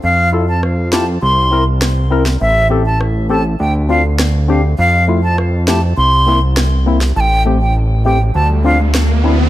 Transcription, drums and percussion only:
0.63 cross-stick
0.93 cross-stick, snare
1.82 cross-stick, snare
2.26 snare
3.01 cross-stick
4.19 cross-stick, snare
5.38 cross-stick
5.68 cross-stick, snare
6.57 cross-stick, snare
7.01 snare
8.95 cross-stick, snare

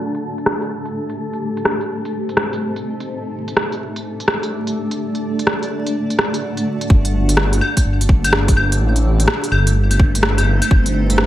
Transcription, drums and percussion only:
0.15 closed hi-hat
0.38 closed hi-hat
0.46 cross-stick
0.62 closed hi-hat
0.85 closed hi-hat
1.10 closed hi-hat
1.33 closed hi-hat
1.57 closed hi-hat
1.65 cross-stick
1.81 closed hi-hat
2.05 closed hi-hat
2.29 closed hi-hat
2.37 cross-stick
2.53 closed hi-hat
2.76 closed hi-hat
3.00 closed hi-hat
3.48 closed hi-hat
3.57 cross-stick
3.72 closed hi-hat
3.96 closed hi-hat
4.20 closed hi-hat
4.28 cross-stick
4.43 closed hi-hat
4.67 closed hi-hat
4.91 closed hi-hat
5.15 closed hi-hat
5.39 closed hi-hat
5.47 cross-stick
5.63 closed hi-hat
5.87 closed hi-hat
6.10 closed hi-hat
6.19 cross-stick
6.34 closed hi-hat
6.57 closed hi-hat
6.81 closed hi-hat
6.90 kick
7.05 closed hi-hat
7.29 closed hi-hat
7.37 cross-stick
7.53 closed hi-hat
7.61 claves
7.77 kick, closed hi-hat
8.01 closed hi-hat
8.09 kick
8.24 closed hi-hat, claves
8.33 cross-stick
8.48 kick, closed hi-hat
8.57 claves
8.72 closed hi-hat
8.96 closed hi-hat
9.20 closed hi-hat
9.28 cross-stick
9.44 closed hi-hat
9.52 claves
9.67 closed hi-hat
9.91 closed hi-hat, claves
9.99 kick
10.15 closed hi-hat
10.23 cross-stick
10.38 closed hi-hat, claves
10.62 closed hi-hat, claves
10.71 kick
10.86 closed hi-hat
11.10 closed hi-hat
11.18 cross-stick

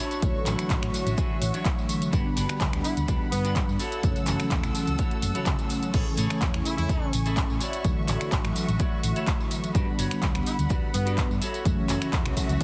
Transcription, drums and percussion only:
0.11 closed hi-hat, tambourine, maracas
0.22 kick, closed hi-hat, tambourine, maracas
0.46 clap, open hi-hat, tambourine, maracas
0.59 finger snap, closed hi-hat, tambourine, maracas
0.70 kick, clap, closed hi-hat, tambourine, maracas
0.83 finger snap, closed hi-hat, maracas
0.94 open hi-hat, tambourine, maracas
1.07 closed hi-hat, tambourine, maracas
1.17 kick, closed hi-hat, tambourine, maracas
1.42 open hi-hat, tambourine, maracas
1.54 closed hi-hat, tambourine, maracas
1.65 kick, clap, closed hi-hat, tambourine, maracas
1.79 tambourine
1.89 open hi-hat, tambourine, maracas
2.02 closed hi-hat, tambourine, maracas
2.13 kick, closed hi-hat, tambourine, maracas
2.37 open hi-hat, tambourine, maracas
2.49 finger snap, closed hi-hat, tambourine, maracas
2.60 kick, clap, closed hi-hat, tambourine, maracas
2.73 finger snap, closed hi-hat, maracas
2.84 open hi-hat, tambourine, maracas
2.97 closed hi-hat, tambourine, maracas
3.08 kick, closed hi-hat, tambourine, maracas
3.32 open hi-hat, tambourine, maracas
3.45 closed hi-hat, tambourine, maracas
3.56 kick, clap, closed hi-hat, tambourine, maracas
3.69 tambourine
3.79 open hi-hat, tambourine, maracas
3.92 closed hi-hat, tambourine, maracas
4.03 kick, closed hi-hat, tambourine, maracas
4.16 closed hi-hat, tambourine, maracas
4.26 clap, open hi-hat, tambourine, maracas
4.39 finger snap, closed hi-hat, tambourine, maracas
4.51 kick, clap, closed hi-hat, tambourine, maracas
4.63 finger snap, closed hi-hat, tambourine, maracas
4.75 open hi-hat, tambourine, maracas
4.87 closed hi-hat, tambourine, maracas
4.98 kick, closed hi-hat, tambourine, maracas
5.11 closed hi-hat
5.22 open hi-hat, tambourine, maracas
5.35 closed hi-hat, tambourine, maracas
5.46 kick, clap, closed hi-hat, tambourine, maracas
5.59 closed hi-hat, tambourine, maracas
5.70 open hi-hat, tambourine, maracas
5.83 closed hi-hat, tambourine, maracas
5.94 kick, closed hi-hat, tambourine, crash, maracas
6.17 open hi-hat, tambourine, maracas
6.30 finger snap, closed hi-hat, tambourine, maracas
6.42 kick, clap, closed hi-hat, tambourine, maracas
6.54 finger snap, closed hi-hat, maracas
6.65 open hi-hat, tambourine, maracas
6.78 closed hi-hat, tambourine, maracas
6.89 kick, closed hi-hat, tambourine, maracas
7.13 open hi-hat, tambourine, maracas
7.26 closed hi-hat, tambourine, maracas
7.37 kick, clap, closed hi-hat, tambourine, maracas
7.50 tambourine
7.61 open hi-hat, tambourine, maracas
7.73 closed hi-hat, tambourine, maracas
7.84 kick, closed hi-hat, tambourine, maracas
8.08 clap, open hi-hat, tambourine, maracas
8.21 finger snap, closed hi-hat, tambourine, maracas
8.32 kick, clap, closed hi-hat, tambourine, maracas
8.45 finger snap, closed hi-hat, maracas
8.56 open hi-hat, tambourine, maracas
8.69 closed hi-hat, tambourine, maracas
8.79 kick, closed hi-hat, tambourine, maracas
9.03 open hi-hat, tambourine, maracas
9.16 closed hi-hat, tambourine, maracas
9.27 kick, clap, closed hi-hat, tambourine, maracas
9.40 tambourine
9.51 open hi-hat, tambourine, maracas
9.64 closed hi-hat, tambourine, maracas
9.75 kick, closed hi-hat, tambourine, maracas
9.99 open hi-hat, tambourine, maracas
10.11 finger snap, closed hi-hat, tambourine, maracas
10.22 kick, clap, closed hi-hat, tambourine, maracas
10.35 finger snap, closed hi-hat, maracas
10.46 open hi-hat, tambourine, maracas
10.59 closed hi-hat, tambourine, maracas
10.70 kick, closed hi-hat, tambourine, maracas
10.94 open hi-hat, tambourine, maracas
11.06 closed hi-hat, tambourine, maracas
11.18 kick, clap, closed hi-hat, tambourine, maracas
11.31 tambourine
11.42 open hi-hat, tambourine, maracas
11.54 closed hi-hat, tambourine, maracas
11.65 kick, closed hi-hat, tambourine, maracas
11.88 clap, open hi-hat, tambourine, maracas
12.02 finger snap, closed hi-hat, tambourine, maracas
12.13 kick, clap, closed hi-hat, tambourine, maracas
12.26 finger snap, closed hi-hat, maracas
12.37 kick, open hi-hat, tambourine, maracas
12.49 closed hi-hat, tambourine, maracas
12.61 kick, closed hi-hat

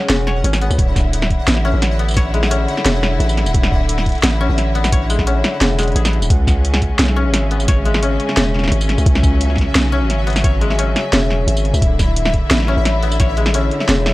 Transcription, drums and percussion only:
0.10 snare, closed hi-hat
0.27 snare
0.44 closed hi-hat
0.53 snare, tambourine
0.61 closed hi-hat
0.71 tambourine
0.79 kick, closed hi-hat
0.96 kick, snare, tambourine
1.13 closed hi-hat
1.22 snare
1.30 kick, closed hi-hat
1.48 snare, closed hi-hat
1.57 snare
1.82 snare, closed hi-hat
1.99 closed hi-hat
2.08 tambourine
2.11 tambourine
2.14 kick, snare, closed hi-hat, tambourine
2.34 closed hi-hat
2.43 snare
2.51 closed hi-hat
2.68 closed hi-hat
2.77 snare
2.86 snare, closed hi-hat
3.03 snare
3.20 closed hi-hat
3.29 tambourine
3.37 snare, closed hi-hat
3.46 tambourine
3.54 kick, closed hi-hat
3.63 snare
3.72 kick
3.89 closed hi-hat
3.98 snare
4.06 kick, closed hi-hat
4.09 closed hi-hat
4.12 closed hi-hat
4.15 closed hi-hat
4.18 closed hi-hat
4.21 snare, closed hi-hat
4.23 closed hi-hat
4.58 snare, closed hi-hat
4.75 closed hi-hat
4.84 snare, tambourine
4.92 kick, closed hi-hat
5.10 closed hi-hat, tambourine
5.18 kick, snare
5.27 closed hi-hat
5.44 snare, closed hi-hat
5.61 snare, closed hi-hat
5.79 snare, closed hi-hat, tambourine
5.83 closed hi-hat
5.88 closed hi-hat
5.92 closed hi-hat
5.96 closed hi-hat
6.05 snare, tambourine
6.13 closed hi-hat
6.22 tambourine
6.30 kick, closed hi-hat
6.47 kick, snare, tambourine
6.65 closed hi-hat
6.74 snare
6.82 kick, closed hi-hat
6.99 snare, closed hi-hat
7.08 snare
7.34 snare, closed hi-hat
7.51 closed hi-hat
7.60 tambourine
7.68 kick, snare, closed hi-hat
7.85 closed hi-hat
7.94 snare
8.03 closed hi-hat
8.20 closed hi-hat
8.29 snare
8.37 snare, closed hi-hat
8.54 snare
8.59 snare
8.64 snare
8.68 snare
8.72 closed hi-hat
8.81 tambourine
8.89 snare, closed hi-hat
8.98 tambourine
9.06 kick, closed hi-hat
9.15 snare
9.23 kick, tambourine
9.41 closed hi-hat
9.50 snare
9.56 kick, snare, closed hi-hat
9.61 snare
9.75 snare, closed hi-hat
10.10 snare, closed hi-hat
10.27 closed hi-hat
10.30 closed hi-hat
10.33 snare, closed hi-hat, tambourine
10.38 closed hi-hat
10.42 kick, closed hi-hat
10.44 closed hi-hat
10.61 closed hi-hat
10.70 snare
10.79 closed hi-hat
10.96 snare, closed hi-hat
11.13 snare, closed hi-hat
11.30 snare
11.48 closed hi-hat
11.57 tambourine
11.65 closed hi-hat
11.74 tambourine
11.82 kick, closed hi-hat
11.99 kick, snare, tambourine
12.16 closed hi-hat
12.25 snare
12.34 kick, closed hi-hat
12.51 snare, closed hi-hat
12.60 snare
12.62 snare
12.65 snare
12.67 snare
12.69 snare
12.72 snare
12.75 snare
12.85 snare, closed hi-hat
13.03 closed hi-hat
13.12 tambourine
13.20 kick, snare, closed hi-hat
13.37 closed hi-hat
13.46 snare
13.54 closed hi-hat
13.71 closed hi-hat
13.80 snare
13.89 snare, closed hi-hat
14.06 snare

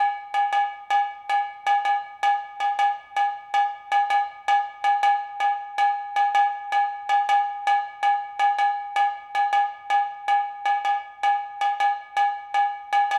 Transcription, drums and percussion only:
0.34 low agogo
0.53 low agogo
0.90 low agogo
1.29 low agogo
1.67 low agogo
1.85 low agogo
2.23 low agogo
2.60 low agogo
2.79 low agogo
3.17 low agogo
3.54 low agogo
3.92 low agogo
4.10 low agogo
4.48 low agogo
4.84 low agogo
5.03 low agogo
5.40 low agogo
5.78 low agogo
6.16 low agogo
6.35 low agogo
6.72 low agogo
7.09 low agogo
7.29 low agogo
7.67 low agogo
8.03 low agogo
8.39 low agogo
8.59 low agogo
8.96 low agogo
9.35 low agogo
9.53 low agogo
9.90 low agogo
10.28 low agogo
10.66 low agogo
10.85 low agogo
11.23 low agogo
11.61 low agogo
11.80 low agogo
12.17 low agogo
12.54 low agogo
12.93 low agogo
13.11 low agogo

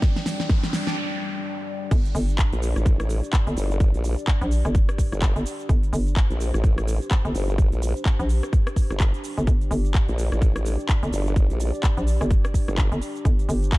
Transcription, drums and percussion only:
0.02 kick, snare, closed hi-hat, shaker
0.16 snare, closed hi-hat
0.26 snare, open hi-hat, shaker
0.40 snare, closed hi-hat, shaker
0.50 kick, snare, closed hi-hat, shaker
0.64 snare, closed hi-hat, shaker
0.73 snare, open hi-hat, shaker
0.87 snare, shaker
1.91 kick, closed hi-hat, crash, shaker
2.05 closed hi-hat, shaker
2.15 open hi-hat, shaker
2.29 closed hi-hat, shaker
2.39 kick, clap, closed hi-hat, shaker
2.53 closed hi-hat, shaker
2.62 open hi-hat, shaker
2.76 cross-stick, closed hi-hat, shaker
2.86 kick, closed hi-hat, shaker
3.00 cross-stick, closed hi-hat, shaker
3.09 open hi-hat, shaker
3.23 closed hi-hat, shaker
3.33 kick, clap, closed hi-hat, shaker
3.47 closed hi-hat, shaker
3.57 open hi-hat, shaker
3.71 closed hi-hat, shaker
3.80 kick, closed hi-hat, shaker
3.94 closed hi-hat, shaker
4.04 open hi-hat, shaker
4.18 closed hi-hat, shaker
4.27 kick, clap, closed hi-hat, shaker
4.41 closed hi-hat, shaker
4.51 open hi-hat, shaker
4.65 cross-stick, closed hi-hat, shaker
4.75 kick, closed hi-hat, shaker
4.89 cross-stick, closed hi-hat, shaker
4.98 kick, open hi-hat, shaker
5.12 cross-stick, closed hi-hat, shaker
5.22 kick, clap, closed hi-hat, shaker
5.36 closed hi-hat, shaker
5.46 open hi-hat, shaker
5.60 closed hi-hat, shaker
5.69 kick, closed hi-hat, shaker
5.83 closed hi-hat, shaker
5.93 open hi-hat, shaker
6.07 closed hi-hat, shaker
6.16 kick, clap, closed hi-hat, shaker
6.31 closed hi-hat, shaker
6.40 open hi-hat, shaker
6.54 cross-stick, closed hi-hat, shaker
6.64 kick, closed hi-hat, shaker
6.78 cross-stick, closed hi-hat, shaker
6.87 open hi-hat, shaker
7.01 closed hi-hat, shaker
7.11 kick, clap, closed hi-hat, shaker
7.25 closed hi-hat, shaker
7.35 open hi-hat, shaker
7.49 closed hi-hat, shaker
7.58 kick, closed hi-hat, shaker
7.72 closed hi-hat, shaker
7.82 open hi-hat, shaker
7.96 closed hi-hat, shaker
8.05 kick, clap, closed hi-hat, shaker
8.20 closed hi-hat, shaker
8.29 open hi-hat, shaker
8.43 cross-stick, shaker
8.53 kick, closed hi-hat, shaker
8.67 cross-stick, closed hi-hat, shaker
8.76 kick, open hi-hat, shaker
8.90 cross-stick, closed hi-hat, shaker
9.00 kick, clap, closed hi-hat, shaker
9.14 closed hi-hat, shaker
9.24 open hi-hat, shaker
9.38 closed hi-hat, shaker
9.47 kick, closed hi-hat, shaker
9.61 closed hi-hat, shaker
9.71 open hi-hat, shaker
9.85 closed hi-hat, shaker
9.94 kick, clap, closed hi-hat, shaker
10.08 closed hi-hat, shaker
10.18 open hi-hat, shaker
10.32 cross-stick, closed hi-hat, shaker
10.42 kick, closed hi-hat, shaker
10.56 cross-stick, closed hi-hat, shaker
10.65 open hi-hat, shaker
10.79 closed hi-hat, shaker
10.89 kick, clap, closed hi-hat, shaker
11.03 closed hi-hat, shaker
11.13 open hi-hat, shaker
11.27 closed hi-hat, shaker
11.36 kick, closed hi-hat, shaker
11.50 closed hi-hat, shaker
11.60 open hi-hat, shaker
11.74 closed hi-hat, shaker
11.83 kick, clap, closed hi-hat, shaker
11.97 closed hi-hat, shaker
12.07 open hi-hat, shaker
12.21 cross-stick, closed hi-hat, shaker
12.31 kick, closed hi-hat, shaker
12.45 cross-stick, closed hi-hat, shaker
12.54 kick, open hi-hat, shaker
12.68 cross-stick, shaker
12.78 kick, clap, closed hi-hat, shaker
12.92 closed hi-hat, shaker
13.01 open hi-hat, shaker
13.15 closed hi-hat, shaker
13.25 kick, closed hi-hat, shaker
13.39 closed hi-hat, shaker
13.49 open hi-hat, shaker
13.63 closed hi-hat, shaker
13.72 kick, clap, closed hi-hat, shaker

